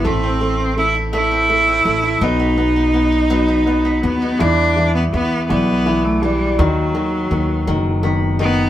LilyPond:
<<
  \new Staff \with { instrumentName = "Cello" } { \time 6/8 \key b \phrygian \tempo 4. = 55 c'4 e'8 e'4. | dis'2~ dis'8 b8 | \key e \minor d'8. b16 b8 b8. a16 g8 | fis2 r8 b8 | }
  \new Staff \with { instrumentName = "Steel-string acoustic guitar" } { \time 6/8 \key b \phrygian <e e'>16 c'16 e16 c'16 e16 e'16 <e e'>16 c'16 e16 c'16 e16 e'16 | <fis dis'>16 b16 fis16 b16 fis16 dis'16 <fis dis'>16 b16 fis16 b16 fis16 dis'16 | \key e \minor g8 g8 b8 g8 b8 d'8 | fis8 fis8 b8 fis8 b8 dis'8 | }
  \new Staff \with { instrumentName = "Grand piano" } { \clef bass \time 6/8 \key b \phrygian a8 a8 a8 a8 a8 a8 | b8 b8 b8 b8 b8 b8 | \key e \minor e8 e8 e8 e8 e8 e8 | dis8 dis8 dis8 dis8 dis8 dis8 | }
  \new Staff \with { instrumentName = "Upright bass" } { \clef bass \time 6/8 \key b \phrygian a,,2~ a,,8 a,,8 | b,,2~ b,,8 dis,8 | \key e \minor e,4 e,8 b,,4. | dis,4 dis,8 fis,,4. | }
>>